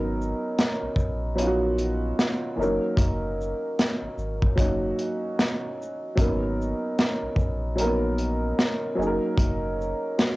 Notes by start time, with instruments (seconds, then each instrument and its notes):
Already playing: sub bass G#1, upright piano F#3 B3 C#4 D#4 A#4
0.22 shaker
0.59 snare, closed hi-hat
0.82 sub bass A#1
0.96 sub bass A#1, kick, shaker
1.35 upright piano F#3 B3 C#4 D#4, closed hi-hat
1.40 upright piano F4
1.47 upright piano F#4
1.78 closed hi-hat, shaker
2.19 snare, closed hi-hat
2.56 sub bass F#1, upright piano E3 A#3 C#4 D#4
2.61 upright piano F#3 A#4, shaker
2.97 sub bass F#1, kick, closed hi-hat
3.41 shaker
3.79 snare, closed hi-hat
4.02 sub bass G#1
4.18 sub bass G#1, shaker
4.42 kick
4.55 sub bass F#1, upright piano F#3 A#3 C#4 D#4, kick, closed hi-hat
4.60 upright piano F#4
4.99 closed hi-hat, shaker
5.39 snare, closed hi-hat
5.82 shaker
6.15 sub bass G#1, upright piano F#3 A#3 C#4 D#4, kick, closed hi-hat
6.20 upright piano B3 A#4
6.62 shaker
6.99 snare, closed hi-hat
7.22 sub bass A#1
7.36 sub bass A#1, kick, shaker
7.76 upright piano F#3 A#3 C#4 D#4, closed hi-hat
7.81 upright piano B3 A#4
8.18 closed hi-hat, shaker
8.59 snare, closed hi-hat
8.95 sub bass F#1, upright piano F#3 A#3 C#4 D#4
9.00 upright piano G#4, shaker
9.07 upright piano A#4
9.38 sub bass F#1, kick, closed hi-hat
9.81 shaker
10.18 upright piano A#3 F#4, snare, closed hi-hat